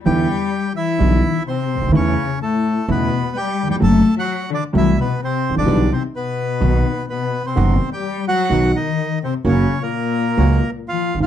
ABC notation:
X:1
M:4/4
L:1/16
Q:1/4=128
K:Em
V:1 name="Bandoneon"
[Gg]6 [Ee]6 [Cc]4 | [^C^c]4 [A,A]4 [B,B]4 [Gg]3 [Gg] | [Aa]3 [Ff]3 [Dd]2 [Ee]2 [B,B]2 [Cc]3 [Dd]- | [Dd]2 [Cc]2 [B,B]8 [B,B]3 [Cc]- |
[Cc]3 [Gg]3 [Ff]4 [^D^d]4 [Cc]2 | [^C^c]3 [^A,^A]8 z [=F=f]3 [Ff] |]
V:2 name="Bandoneon"
z16 | z16 | z16 | z16 |
[B,^DF]2 z6 [B,DF]2 z6 | [^A,^CF]2 z6 [A,CF]2 z6 |]
V:3 name="Grand piano" clef=bass
[E,,D,E,G,B,E]2 z6 [B,,,B,,D,G,B,E]2 z4 z/2 ^C,,/2 D,,/2 ^D,,/2 | [E,,^C,E,A,E]2 z6 [E,,C,E,A,E]2 z4 z/2 ^D,,/2 E,,/2 =F,,/2 | [F,,C,F,A,F]2 z6 [C,,C,F,A,F]2 z4 z/2 ^G,,,/2 A,,,/2 ^A,,,/2 | [B,,,B,,E,G,B,G]2 z6 [B,,,B,,^D,F,B,F]2 z6 |
[F,,,F,,^D,F,B,F]2 z6 [B,,,B,,D,F,B,F]2 z6 | [F,,^C,F,^A,F]2 z6 [^C,,C,F,A,F]2 z4 z/2 ^G,,,/2 =A,,,/2 z/2 |]
V:4 name="Cello" clef=bass
G,6 E,6 C,4 | ^C,4 A,,4 B,,4 G,3 G, | A,3 F,3 D,2 E,2 B,,2 C,3 D,- | D,2 C,2 B,,8 B,,3 C,- |
C,3 G,3 F,4 ^D,4 C,2 | ^C,3 ^A,,8 z =F,3 F, |]
V:5 name="Upright bass" clef=bass
E,,3/2 z6 z/2 B,,,3/2 z4 z ^C,,/2 D,,/2 ^D,,/2 | E,,3/2 z6 z/2 E,,3/2 z6 z/2 | F,,,3/2 z6 z/2 C,,3/2 z4 z ^G,,,/2 A,,,/2 ^A,,,/2 | B,,,3/2 z6 z/2 B,,,3/2 z6 z/2 |
F,,,3/2 z6 z/2 B,,,3/2 z6 z/2 | F,,,3/2 z6 z/2 ^C,,3/2 z4 z ^G,,,/2 A,,,/2 z/2 |]